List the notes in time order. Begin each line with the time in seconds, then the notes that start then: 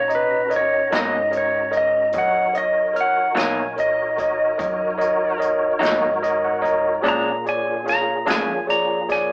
Already playing: A#2 C#4 D#4 F#4 C#5 A#5
0.08 C#5 D#5 A#5, closed hi-hat
0.15 B4
0.49 A#4 C#5 D#5, closed hi-hat
0.56 C#5
0.91 G#2 B2 F#3 A#3 D#4 A#4 C#5 D#5, snare, closed hi-hat
0.96 D#5
1.31 A#4 C#5 D#5, closed hi-hat
1.37 C#5
1.71 A#4 C#5 D#5, closed hi-hat
1.77 D#5
2.12 F#2 D#4 F#4 A#4 C#5 D#5, kick, closed hi-hat
2.17 A#4 C#5 F#5
2.53 A#4 C#5 D#5, closed hi-hat
2.58 D#5
2.93 A#4 C#5 F6, closed hi-hat
3.01 F#5
3.35 A#2 B2 F#3 A#3 D#4 A#4 C#5 F5 G#5, closed hi-hat
3.39 snare
3.76 A#4 C#5 D#5, closed hi-hat
4.18 A#4 C#5 D#5, kick, closed hi-hat
4.58 F#2 A#4 C#5 D#5, kick, closed hi-hat
4.97 A#4 C#5 D#5, closed hi-hat
5.38 A#4 C#5 D#5, closed hi-hat
5.79 G#2 B2 F#3 A#3 D#4 A#4 C#5 D#5, closed hi-hat
5.85 snare
6.22 A#4 C#5 D#5, closed hi-hat
6.44 F#5
6.61 A#4 C#5 D#5 A#5, kick, closed hi-hat
7.02 A#2 G#3 A#3 C#4 D4 F4 G#4 C#5 D5, kick, closed hi-hat
7.08 A#5
7.46 G#4 C#5 D5 G#5, closed hi-hat
7.84 G#4 C#5 F5, closed hi-hat
7.89 A#5, snare
8.25 F2 A#2 G#3 C#4 D4 G#4 C#5 F5, closed hi-hat
8.30 G#5, snare
8.67 G#4 C#5 D5 A#5, closed hi-hat
9.08 G#4 C#5 D5 G#5, kick, snare, closed hi-hat